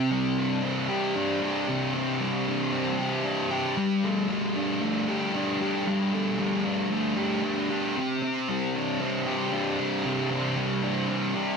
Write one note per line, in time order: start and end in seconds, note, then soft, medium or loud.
0.00 0.89 C3 medium
0.00 0.61 C4 medium
0.11 2.20 G3 medium
0.37 1.15 D4 medium
0.63 1.93 C4 medium
0.89 1.42 G4 medium
1.16 2.46 D4 medium
1.42 2.98 G4 medium
1.68 2.99 C3 medium
1.94 2.71 C4 medium
2.20 3.77 G3 medium
2.47 3.24 D4 medium
2.72 3.77 C4 medium
2.98 3.51 G4 medium
3.25 4.56 D4 medium
3.51 4.07 G4 medium
3.77 4.29 G3 medium
4.04 4.81 A3 medium
4.29 5.86 G3 medium
4.56 5.34 D4 medium
4.82 6.12 A3 medium
5.08 5.60 G4 medium
5.34 6.65 D4 medium
5.61 6.93 G4 medium
5.87 6.38 G3 medium
6.13 6.89 A3 medium
6.39 7.96 G3 medium
6.65 7.43 D4 medium
6.90 7.95 A3 medium
7.17 7.69 G4 medium
7.43 7.99 D4 medium
7.70 8.74 G4 medium
7.96 9.26 C3 medium
8.22 8.99 C4 medium
8.48 10.56 G3 medium
8.74 9.52 D4 medium
9.00 10.29 C4 medium
9.27 9.79 G4 medium
9.52 10.82 D4 medium
9.79 11.34 G4 medium
10.04 11.35 C3 medium
10.30 11.08 C4 medium
10.57 11.57 G3 medium
10.82 11.57 D4 medium
11.09 11.57 C4 medium
11.35 11.57 G4 medium